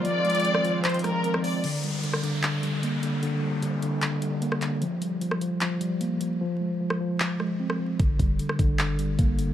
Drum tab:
CC |--------------------------------|x-------------------------------|--------------------------------|--------------------------------|
HH |x---xxxxx---x---xxxxx---x---o---|x---x---x---x---x---x---x---x---|x-------x---x---x---x---x---x---|x---x---x---x---x---x---x---x---|
CP |----------------x---------------|----------------x---------------|----------------x-----------x---|----------------x---------------|
SD |----------r---------r-----r-----|----------r---------------------|--------------------------r-----|----------r---------------------|
BD |--------------------------------|--------------------------------|--------------------------------|--------------------------------|

CC |--------------------------------|--------------------------------|
HH |--------------------------------|x---x---x---x---x---x---x---x---|
CP |----------------x---------------|----------------x---------------|
SD |----------r---------r-----r-----|----------r---------------------|
BD |--------------------------------|o---o-------o-----------o-------|